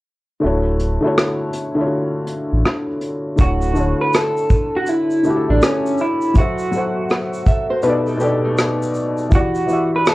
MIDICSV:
0, 0, Header, 1, 6, 480
1, 0, Start_track
1, 0, Key_signature, 2, "major"
1, 0, Tempo, 740741
1, 277, Time_signature, 4, 2, 24, 8
1, 6575, End_track
2, 0, Start_track
2, 0, Title_t, "Nylon-string guitar"
2, 0, Program_c, 0, 24
2, 4839, Note_on_c, 0, 76, 80
2, 4843, Note_on_c, 0, 69, 66
2, 4985, Note_off_c, 0, 76, 0
2, 4988, Note_off_c, 0, 69, 0
2, 4990, Note_on_c, 0, 72, 85
2, 4993, Note_on_c, 0, 66, 67
2, 5072, Note_off_c, 0, 72, 0
2, 5073, Note_off_c, 0, 66, 0
2, 5075, Note_on_c, 0, 71, 79
2, 5079, Note_on_c, 0, 65, 67
2, 5224, Note_off_c, 0, 71, 0
2, 5226, Note_off_c, 0, 65, 0
2, 5231, Note_on_c, 0, 69, 76
2, 5235, Note_on_c, 0, 63, 69
2, 5312, Note_off_c, 0, 69, 0
2, 5314, Note_off_c, 0, 63, 0
2, 5317, Note_on_c, 0, 67, 83
2, 5320, Note_on_c, 0, 62, 69
2, 5464, Note_off_c, 0, 67, 0
2, 5466, Note_off_c, 0, 62, 0
2, 5473, Note_on_c, 0, 63, 76
2, 5477, Note_on_c, 0, 57, 64
2, 6012, Note_off_c, 0, 63, 0
2, 6014, Note_off_c, 0, 57, 0
2, 6575, End_track
3, 0, Start_track
3, 0, Title_t, "Clean electric guitar"
3, 0, Program_c, 1, 27
3, 2210, Note_on_c, 1, 66, 98
3, 2573, Note_off_c, 1, 66, 0
3, 2602, Note_on_c, 1, 71, 92
3, 2693, Note_off_c, 1, 71, 0
3, 2693, Note_on_c, 1, 69, 92
3, 3088, Note_on_c, 1, 66, 89
3, 3092, Note_off_c, 1, 69, 0
3, 3169, Note_off_c, 1, 66, 0
3, 3169, Note_on_c, 1, 64, 90
3, 3562, Note_off_c, 1, 64, 0
3, 3564, Note_on_c, 1, 62, 76
3, 3646, Note_off_c, 1, 62, 0
3, 3650, Note_on_c, 1, 61, 91
3, 3891, Note_off_c, 1, 61, 0
3, 3896, Note_on_c, 1, 64, 88
3, 4133, Note_off_c, 1, 64, 0
3, 4136, Note_on_c, 1, 66, 87
3, 4821, Note_off_c, 1, 66, 0
3, 6059, Note_on_c, 1, 66, 95
3, 6417, Note_off_c, 1, 66, 0
3, 6453, Note_on_c, 1, 71, 91
3, 6530, Note_off_c, 1, 71, 0
3, 6537, Note_on_c, 1, 69, 90
3, 6575, Note_off_c, 1, 69, 0
3, 6575, End_track
4, 0, Start_track
4, 0, Title_t, "Felt piano"
4, 0, Program_c, 2, 0
4, 259, Note_on_c, 2, 50, 68
4, 268, Note_on_c, 2, 57, 60
4, 278, Note_on_c, 2, 64, 63
4, 288, Note_on_c, 2, 66, 63
4, 299, Note_on_c, 2, 73, 78
4, 387, Control_c, 2, 64, 127
4, 501, Note_off_c, 2, 50, 0
4, 505, Note_off_c, 2, 57, 0
4, 510, Note_off_c, 2, 64, 0
4, 515, Note_off_c, 2, 66, 0
4, 520, Note_off_c, 2, 73, 0
4, 652, Note_on_c, 2, 50, 72
4, 663, Note_on_c, 2, 57, 72
4, 673, Note_on_c, 2, 64, 71
4, 684, Note_on_c, 2, 66, 73
4, 692, Note_on_c, 2, 73, 87
4, 949, Note_off_c, 2, 50, 0
4, 955, Note_off_c, 2, 57, 0
4, 959, Note_off_c, 2, 64, 0
4, 965, Note_off_c, 2, 66, 0
4, 969, Note_off_c, 2, 73, 0
4, 1133, Note_on_c, 2, 50, 79
4, 1142, Note_on_c, 2, 57, 59
4, 1153, Note_on_c, 2, 64, 63
4, 1162, Note_on_c, 2, 65, 54
4, 1172, Note_on_c, 2, 73, 79
4, 1187, Note_off_c, 2, 65, 0
4, 1206, Note_on_c, 2, 66, 68
4, 1723, Note_off_c, 2, 50, 0
4, 1728, Note_off_c, 2, 57, 0
4, 1733, Note_off_c, 2, 64, 0
4, 1743, Note_off_c, 2, 73, 0
4, 1760, Note_off_c, 2, 66, 0
4, 2179, Note_on_c, 2, 50, 62
4, 2190, Note_on_c, 2, 57, 55
4, 2199, Note_on_c, 2, 64, 54
4, 2205, Control_c, 2, 64, 0
4, 2210, Note_on_c, 2, 66, 50
4, 2223, Note_on_c, 2, 73, 62
4, 2318, Control_c, 2, 64, 127
4, 2367, Note_off_c, 2, 50, 0
4, 2372, Note_off_c, 2, 57, 0
4, 2377, Note_off_c, 2, 64, 0
4, 2382, Note_off_c, 2, 66, 0
4, 2388, Note_off_c, 2, 73, 0
4, 2421, Note_on_c, 2, 50, 70
4, 2430, Note_on_c, 2, 57, 63
4, 2442, Note_on_c, 2, 64, 60
4, 2450, Note_on_c, 2, 66, 57
4, 2461, Note_on_c, 2, 73, 72
4, 3073, Note_off_c, 2, 50, 0
4, 3077, Note_off_c, 2, 57, 0
4, 3083, Note_off_c, 2, 64, 0
4, 3088, Note_off_c, 2, 66, 0
4, 3093, Note_off_c, 2, 73, 0
4, 3390, Note_on_c, 2, 50, 68
4, 3399, Note_on_c, 2, 57, 66
4, 3410, Note_on_c, 2, 64, 68
4, 3419, Note_on_c, 2, 66, 64
4, 3431, Note_on_c, 2, 67, 70
4, 3469, Note_off_c, 2, 67, 0
4, 3473, Note_on_c, 2, 69, 79
4, 3859, Note_off_c, 2, 50, 0
4, 3863, Note_off_c, 2, 57, 0
4, 3869, Note_off_c, 2, 64, 0
4, 3873, Note_off_c, 2, 66, 0
4, 3900, Note_off_c, 2, 69, 0
4, 4108, Note_on_c, 2, 54, 63
4, 4119, Note_on_c, 2, 66, 55
4, 4125, Control_c, 2, 64, 0
4, 4128, Note_on_c, 2, 69, 55
4, 4138, Note_on_c, 2, 72, 55
4, 4150, Note_on_c, 2, 76, 68
4, 4228, Control_c, 2, 64, 127
4, 4291, Note_off_c, 2, 54, 0
4, 4296, Note_off_c, 2, 66, 0
4, 4301, Note_off_c, 2, 69, 0
4, 4306, Note_off_c, 2, 72, 0
4, 4312, Note_off_c, 2, 76, 0
4, 4350, Note_on_c, 2, 54, 67
4, 4363, Note_on_c, 2, 66, 56
4, 4371, Note_on_c, 2, 69, 61
4, 4381, Note_on_c, 2, 72, 61
4, 4392, Note_on_c, 2, 78, 75
4, 4997, Note_off_c, 2, 54, 0
4, 5004, Note_off_c, 2, 66, 0
4, 5008, Note_off_c, 2, 69, 0
4, 5013, Note_off_c, 2, 72, 0
4, 5018, Note_off_c, 2, 78, 0
4, 5074, Note_on_c, 2, 47, 94
4, 5083, Note_on_c, 2, 59, 84
4, 5086, Control_c, 2, 64, 0
4, 5090, Note_on_c, 2, 63, 85
4, 5100, Note_on_c, 2, 67, 72
4, 5106, Note_on_c, 2, 69, 82
4, 5115, Note_on_c, 2, 74, 102
4, 5185, Control_c, 2, 64, 127
4, 5282, Note_off_c, 2, 47, 0
4, 5286, Note_off_c, 2, 59, 0
4, 5290, Note_off_c, 2, 63, 0
4, 5294, Note_off_c, 2, 67, 0
4, 5295, Note_on_c, 2, 47, 92
4, 5297, Note_off_c, 2, 69, 0
4, 5302, Note_off_c, 2, 74, 0
4, 5304, Note_on_c, 2, 59, 85
4, 5312, Note_on_c, 2, 63, 76
4, 5319, Note_on_c, 2, 67, 77
4, 5329, Note_on_c, 2, 69, 86
4, 5337, Note_on_c, 2, 74, 94
4, 5771, Note_off_c, 2, 47, 0
4, 5776, Note_off_c, 2, 59, 0
4, 5780, Note_off_c, 2, 63, 0
4, 5783, Note_off_c, 2, 67, 0
4, 5788, Note_off_c, 2, 69, 0
4, 5792, Note_off_c, 2, 74, 0
4, 6018, Note_on_c, 2, 52, 57
4, 6029, Note_on_c, 2, 64, 65
4, 6039, Note_on_c, 2, 66, 56
4, 6045, Control_c, 2, 64, 0
4, 6050, Note_on_c, 2, 67, 58
4, 6060, Note_on_c, 2, 74, 73
4, 6161, Control_c, 2, 64, 127
4, 6206, Note_off_c, 2, 52, 0
4, 6212, Note_off_c, 2, 64, 0
4, 6216, Note_off_c, 2, 66, 0
4, 6222, Note_off_c, 2, 67, 0
4, 6227, Note_off_c, 2, 74, 0
4, 6264, Note_on_c, 2, 52, 62
4, 6273, Note_on_c, 2, 64, 59
4, 6284, Note_on_c, 2, 66, 54
4, 6292, Note_on_c, 2, 67, 61
4, 6304, Note_on_c, 2, 76, 71
4, 6575, Note_off_c, 2, 52, 0
4, 6575, Note_off_c, 2, 64, 0
4, 6575, Note_off_c, 2, 66, 0
4, 6575, Note_off_c, 2, 67, 0
4, 6575, Note_off_c, 2, 76, 0
4, 6575, End_track
5, 0, Start_track
5, 0, Title_t, "Sub bass"
5, 0, Program_c, 3, 38
5, 284, Note_on_c, 3, 26, 89
5, 635, Note_off_c, 3, 26, 0
5, 1637, Note_on_c, 3, 33, 92
5, 1711, Note_off_c, 3, 33, 0
5, 2200, Note_on_c, 3, 26, 105
5, 2553, Note_off_c, 3, 26, 0
5, 3559, Note_on_c, 3, 33, 85
5, 3632, Note_off_c, 3, 33, 0
5, 6575, End_track
6, 0, Start_track
6, 0, Title_t, "Drums"
6, 515, Note_on_c, 9, 42, 57
6, 580, Note_off_c, 9, 42, 0
6, 764, Note_on_c, 9, 37, 101
6, 828, Note_off_c, 9, 37, 0
6, 991, Note_on_c, 9, 42, 68
6, 1056, Note_off_c, 9, 42, 0
6, 1471, Note_on_c, 9, 42, 69
6, 1536, Note_off_c, 9, 42, 0
6, 1721, Note_on_c, 9, 37, 104
6, 1786, Note_off_c, 9, 37, 0
6, 1952, Note_on_c, 9, 42, 60
6, 2017, Note_off_c, 9, 42, 0
6, 2192, Note_on_c, 9, 42, 58
6, 2192, Note_on_c, 9, 82, 56
6, 2197, Note_on_c, 9, 36, 115
6, 2257, Note_off_c, 9, 42, 0
6, 2257, Note_off_c, 9, 82, 0
6, 2262, Note_off_c, 9, 36, 0
6, 2345, Note_on_c, 9, 82, 49
6, 2410, Note_off_c, 9, 82, 0
6, 2437, Note_on_c, 9, 82, 48
6, 2502, Note_off_c, 9, 82, 0
6, 2679, Note_on_c, 9, 42, 63
6, 2679, Note_on_c, 9, 82, 62
6, 2687, Note_on_c, 9, 37, 97
6, 2744, Note_off_c, 9, 42, 0
6, 2744, Note_off_c, 9, 82, 0
6, 2752, Note_off_c, 9, 37, 0
6, 2833, Note_on_c, 9, 82, 45
6, 2898, Note_off_c, 9, 82, 0
6, 2914, Note_on_c, 9, 82, 51
6, 2917, Note_on_c, 9, 36, 91
6, 2979, Note_off_c, 9, 82, 0
6, 2982, Note_off_c, 9, 36, 0
6, 3153, Note_on_c, 9, 42, 54
6, 3153, Note_on_c, 9, 82, 59
6, 3217, Note_off_c, 9, 42, 0
6, 3217, Note_off_c, 9, 82, 0
6, 3308, Note_on_c, 9, 82, 46
6, 3373, Note_off_c, 9, 82, 0
6, 3396, Note_on_c, 9, 82, 52
6, 3460, Note_off_c, 9, 82, 0
6, 3640, Note_on_c, 9, 42, 57
6, 3640, Note_on_c, 9, 82, 60
6, 3646, Note_on_c, 9, 37, 95
6, 3704, Note_off_c, 9, 42, 0
6, 3704, Note_off_c, 9, 82, 0
6, 3710, Note_off_c, 9, 37, 0
6, 3798, Note_on_c, 9, 82, 50
6, 3863, Note_off_c, 9, 82, 0
6, 3873, Note_on_c, 9, 82, 49
6, 3938, Note_off_c, 9, 82, 0
6, 4026, Note_on_c, 9, 82, 40
6, 4091, Note_off_c, 9, 82, 0
6, 4115, Note_on_c, 9, 42, 56
6, 4115, Note_on_c, 9, 82, 53
6, 4119, Note_on_c, 9, 36, 104
6, 4179, Note_off_c, 9, 42, 0
6, 4179, Note_off_c, 9, 82, 0
6, 4184, Note_off_c, 9, 36, 0
6, 4266, Note_on_c, 9, 82, 45
6, 4331, Note_off_c, 9, 82, 0
6, 4357, Note_on_c, 9, 82, 42
6, 4422, Note_off_c, 9, 82, 0
6, 4599, Note_on_c, 9, 42, 63
6, 4599, Note_on_c, 9, 82, 66
6, 4606, Note_on_c, 9, 37, 92
6, 4663, Note_off_c, 9, 42, 0
6, 4663, Note_off_c, 9, 82, 0
6, 4671, Note_off_c, 9, 37, 0
6, 4752, Note_on_c, 9, 82, 46
6, 4817, Note_off_c, 9, 82, 0
6, 4834, Note_on_c, 9, 82, 49
6, 4837, Note_on_c, 9, 36, 89
6, 4899, Note_off_c, 9, 82, 0
6, 4901, Note_off_c, 9, 36, 0
6, 5071, Note_on_c, 9, 42, 55
6, 5071, Note_on_c, 9, 82, 59
6, 5136, Note_off_c, 9, 42, 0
6, 5136, Note_off_c, 9, 82, 0
6, 5228, Note_on_c, 9, 82, 47
6, 5293, Note_off_c, 9, 82, 0
6, 5314, Note_on_c, 9, 82, 52
6, 5379, Note_off_c, 9, 82, 0
6, 5557, Note_on_c, 9, 42, 58
6, 5557, Note_on_c, 9, 82, 54
6, 5563, Note_on_c, 9, 37, 94
6, 5622, Note_off_c, 9, 42, 0
6, 5622, Note_off_c, 9, 82, 0
6, 5628, Note_off_c, 9, 37, 0
6, 5717, Note_on_c, 9, 82, 48
6, 5782, Note_off_c, 9, 82, 0
6, 5793, Note_on_c, 9, 82, 47
6, 5858, Note_off_c, 9, 82, 0
6, 5945, Note_on_c, 9, 82, 39
6, 6010, Note_off_c, 9, 82, 0
6, 6035, Note_on_c, 9, 42, 53
6, 6035, Note_on_c, 9, 82, 56
6, 6038, Note_on_c, 9, 36, 115
6, 6100, Note_off_c, 9, 42, 0
6, 6100, Note_off_c, 9, 82, 0
6, 6103, Note_off_c, 9, 36, 0
6, 6188, Note_on_c, 9, 82, 42
6, 6253, Note_off_c, 9, 82, 0
6, 6278, Note_on_c, 9, 82, 48
6, 6343, Note_off_c, 9, 82, 0
6, 6519, Note_on_c, 9, 42, 63
6, 6519, Note_on_c, 9, 82, 62
6, 6526, Note_on_c, 9, 37, 106
6, 6575, Note_off_c, 9, 37, 0
6, 6575, Note_off_c, 9, 42, 0
6, 6575, Note_off_c, 9, 82, 0
6, 6575, End_track
0, 0, End_of_file